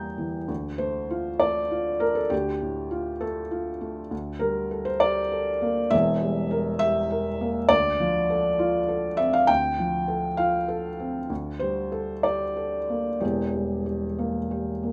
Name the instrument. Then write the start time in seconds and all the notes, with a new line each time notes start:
felt piano
Already playing: E2 G3 A#3 G4 G5 A#5 G6
0.18 E3
0.48 D2
0.78 A3 C5
1.10 F4
1.40 A3 D5
1.71 F4
2.00 A3 A#4
2.15 A4
2.30 D2 G4
2.62 A2
2.91 F4
3.21 A3 A4
3.51 F4
3.81 A3
4.11 D2
4.39 G3 A#4
4.71 A4
4.85 C5
5.00 G4 D5
5.32 A4
5.62 A#3
5.90 E1 E2 E5
6.21 G3
6.51 A#4
6.79 G4 E5
7.10 A#4
7.41 A#3
7.69 D2 D5
8.00 F3
8.30 A4
8.59 F4
8.88 A4
9.17 C4 E5
9.33 F5
9.47 D2 G5
9.79 F3
10.08 A4
10.37 F4 F5
10.68 A4
11.00 C4
11.30 D2
11.60 G3 C5
11.92 A4
12.23 G4 D5
12.57 A4
12.90 A#3
13.20 E1 E2 G4
13.54 G3
13.86 G4
14.19 A#3
14.51 G4
14.83 A#3